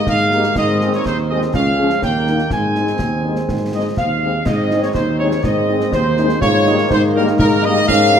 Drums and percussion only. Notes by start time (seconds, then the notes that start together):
0.07 concert bass drum, snare
0.31 snare
0.44 snare
0.56 concert bass drum, snare, crash
0.81 snare
0.93 snare
1.05 concert bass drum, snare
1.42 snare
1.54 concert bass drum, snare
1.90 snare
2.02 concert bass drum, snare
2.27 snare
2.39 snare
2.50 concert bass drum, snare
2.75 snare
2.87 snare
2.99 concert bass drum, snare
3.36 snare
3.49 concert bass drum, snare
3.97 concert bass drum, snare
4.46 concert bass drum, snare, crash
4.71 snare
4.83 snare
4.95 concert bass drum, snare
5.31 snare
5.44 concert bass drum, snare
5.81 snare
5.92 concert bass drum, snare
6.17 snare
6.29 snare
6.42 concert bass drum, snare
6.66 snare
6.78 snare
6.91 concert bass drum, snare
7.28 snare
7.39 concert bass drum, snare
7.76 snare
7.88 concert bass drum, snare
8.13 snare